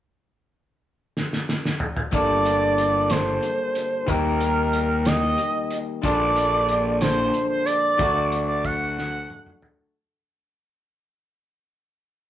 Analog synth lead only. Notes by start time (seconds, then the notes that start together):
2.14 D5
3.11 C5
4.08 A#4
5.06 D#5
6.03 D5
7.01 C5
7.49 C5
7.65 D5
8.49 D5
8.65 F#5
8.98 F#5